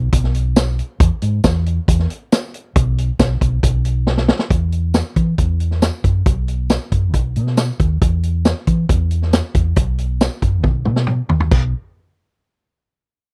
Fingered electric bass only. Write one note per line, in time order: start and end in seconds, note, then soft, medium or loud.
0.12 0.80 B1 loud
1.00 1.09 E2 loud
1.22 1.39 G#2 medium
1.44 1.78 E2 medium
1.88 2.05 E2 loud
2.75 3.09 B1 loud
3.19 3.36 B1 medium
3.41 3.58 B1 medium
3.63 4.30 B1 medium
4.50 5.01 E2 medium
5.16 5.33 E3 medium
5.38 5.89 E2 loud
6.04 6.21 F#2 medium
6.26 6.76 B1 medium
6.92 7.14 F#2 loud
7.14 7.38 B1 medium
7.37 7.70 B2 medium
7.80 7.96 D#2 medium
8.02 8.52 E2 medium
8.67 8.84 E3 medium
8.89 9.40 E2 loud
9.55 9.72 E2 medium
9.76 10.27 B1 medium
10.43 10.64 F#2 loud
10.64 10.88 B1 medium
10.86 11.20 B2 medium
11.30 11.47 D#2 loud
11.52 11.72 B1 medium